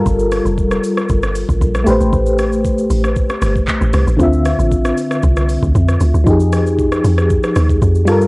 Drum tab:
HH |--o---o---o---o-|--o---o---o---o-|--o---o---o---o-|--o---o---o---o-|
SH |xxxxxxxxxxxxxxxx|xxxxxxxxxxxxxxxx|xxxxxxxxxxxxxxxx|xxxxxxxxxxxxxxxx|
CP |----------------|------------x---|----------------|----------------|
SD |--r--r-r-r---r--|--r----r-rr---r-|--r--r-r-r---r--|--r--r-r-rr---r-|
BD |o---o---o--oo---|o---o---o--oo---|o---o---o--oo---|o---o---o--oo---|